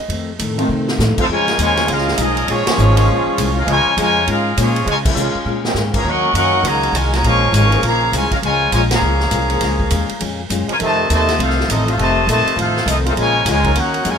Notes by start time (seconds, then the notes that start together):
Already playing: D#5
0.09 F2 D#3 A3 C4, ride
0.39 F2 A2 D#3 A3 C4, hi-hat pedal, ride
0.57 D#3 A3 C4 F4, ride
0.69 F2 C3 D#3 A3 C4
0.88 snare
0.99 F2 A2 D#3 A3 C4, snare, hi-hat pedal
1.18 A3 C4 D#4 F4 A4 C5 F5, kick, crash
1.28 F2 A#2 C#3 F3 G#3 C#4 F4 A#4 C#5 G#5
1.48 snare, ride
1.58 D#2 A#2 C#3 F3 G#3 C#4 F4 A#4 C#5 G#5, hi-hat pedal, ride
1.77 C#3 G#3 A#3 F4, snare, ride
1.88 C#2 A#2 G#3 C#4 F4 G#4 A#4 F5, ride
1.98 snare
2.08 snare
2.18 B1 A#2 F3 G#3 C#4 D#4 F4 G#4 A#4 D#5, hi-hat pedal, ride
2.37 ride
2.47 A#1 A#2 F3 G#3 A#3 C#4 F4 G#4 C#5, ride
2.65 F3 G#3 A#3 C#4 F4 G#4 C#5, muted upright bass stroke, snare, ride
2.77 G#1 A#2 G#3 C#4 F4, hi-hat pedal
2.96 C#3 G#3 A#3 F4, ride
3.07 A#1 A#2 G#3 C#4 F4
3.26 muted upright bass stroke
3.37 C2 A#2 G#3 C#4 F4, hi-hat pedal, ride
3.55 G#3 C#4 F4 G#4 A#4
3.59 F5
3.66 C#2 A#2 C#3 F3 G#3 C#4 F4, ride
3.70 F4 A#4 C#5 G#5
3.96 F2 A#2 C#3 F3 G#3 C#4 F4, hi-hat pedal, ride
4.00 F4 A#4 C#5 G#5
4.26 G#2 A#2 G#3 C#4 F4 G#4 A#4 F5, ride
4.56 A#2 F3 G#3 C#4 F4, hi-hat pedal, ride
4.60 A#3 G#4 C#5
4.76 ride
4.85 A#2 C#3 F3 G#3 C#4 F4, ride
4.89 F4 A#4 C#5 G#5
5.04 G#3 C#4 F4, kick, crash
5.08 C#4 G#4 A#4 F5
5.15 A#2 C3 C#3 G#3 A#3 C#4 F4, hi-hat pedal
5.35 muted upright bass stroke
5.45 A#2 G#3 C#4 F4
5.64 C#3 G#3 A#3 C4, snare
5.74 G#2 A#2 G#3 C#4 F4, snare, hi-hat pedal
5.93 C#3 F3 A#3, kick, crash
5.97 G#4 C#5 F5 A#5
6.04 D#2 D#3 F#3 A#3 C#4 F#4
6.08 A#4 D#5 F#5 C#6
6.33 F#2 D#3 F#3 A#3 C#4 F#4 A#4 D#5 F#5 C#6, hi-hat pedal, ride
6.54 D#3 A#3 C#4 F#4
6.63 C#2 C#3 D#3 F#3 A#3 C#4 F#4 C#5 D#5 A#5, ride
6.83 ride
6.93 C2 D#3 G#3 A#3 C#4 F4 F#4 A#4 C#5 G#5, hi-hat pedal, ride
7.13 C#3 F#3 A#3 F#4 C#5 D#5 A#5, snare, ride
7.23 A#1 A#2 F3 G#3 C#4 F4 A#4 F5 G#5 C#6, ride
7.52 G#1 A#2 F3 G#3 C#4 F4 A#4 F5 G#5 C#6, hi-hat pedal, ride
7.72 F3 A#3 C#4 G#4, ride
7.82 A#1 A#2 C#3 F3 G#3 A#3 C#4 F4, ride
7.86 G#4 C#5 F5 A#5
8.12 C2 A#2 C#3 F3 G#3 C#4 F4 A#4 C#5 G#5, hi-hat pedal, ride
8.16 F4
8.31 G#3 C#4 F4 G#4 A#4 F5, muted upright bass stroke, kick, ride
8.42 C#2 A#2 C#3 F3 G#3 C#4 F4 A#4 C#5 G#5, ride
8.72 A#1 A#2 C#3 F3 G#3 C#4 F4 A#4 C#5 G#5, hi-hat pedal, ride
8.91 C#3 F3 A#3 G#4 C#5 F5 A#5, snare, ride
9.02 C#2 A#2 G#3 C#4 F4
9.20 snare
9.31 C2 A#2 G#3 C#4 F4, hi-hat pedal, ride
9.50 F3 A#3 C#4 G#4, ride
9.61 C#2 A#2 G#3 C#4 F4, snare, ride
9.80 kick
9.90 D#2 A#2 G#3 C#4 F4, hi-hat pedal, ride
10.09 muted upright bass stroke, ride
10.20 F2 A#2 G#3 C#4 F4, ride
10.49 F#2 A#2 G#3 C#4 F4, hi-hat pedal, ride
10.68 C#3 F3 G#3 F4 A#4 C#5 G#5, muted upright bass stroke, ride
10.79 F2 C3 D#3 A3 C4, ride
10.83 F4 C5 D#5 A5
11.10 D#2 F2 C3 D#3 A3 C4 F4 C5 D#5 A5, hi-hat pedal, ride
11.29 snare, ride
11.38 C2 F2 D#3 A3 C4 F4 A4, ride
11.42 D#4 C5 F5
11.50 snare
11.60 snare
11.68 A1 F2 D#3 A3 C4 D#4 F4 A4 D#5, hi-hat pedal, ride
11.86 A3 C4 F4 A4 C5 F5, ride
11.90 D#4
11.97 F1 F2 C3 D#3 A3 C4 F4 C5 D#5 A5, ride
12.27 A#1 F2 C3 D#3 A3 C4 F4 C5 D#5 A5, hi-hat pedal, ride
12.46 muted upright bass stroke, ride
12.56 A1 F2 D#3 A3 C4 F4 A4, ride
12.60 D#4 C5 F5
12.77 snare
12.86 C2 F2 D#3 A3 C4 D#4 F4 A4 D#5, hi-hat pedal, ride
13.05 G#3 A3 C4 C#4 F4 A4 A#4 C5, ride
13.09 D#4 F5
13.16 A#1 A#2 C#3 F3 G#3 C#4 F4 C#5, ride
13.20 A#4 G#5
13.46 C#2 A#2 C#3 F3 G#3 C#4 F4, snare, hi-hat pedal, ride
13.50 F4 A#4 C#5 G#5
13.64 F#3 C#4 D#4 A#4, kick, ride
13.75 D#2 D#3 A#3 C#4 D#4 F#4 A#4 C#5 F#5, ride
13.94 ride
14.05 F#2 D#3 G#3 A#3 C#4 F#4, hi-hat pedal, ride
14.10 F4 A#4 C#5 G#5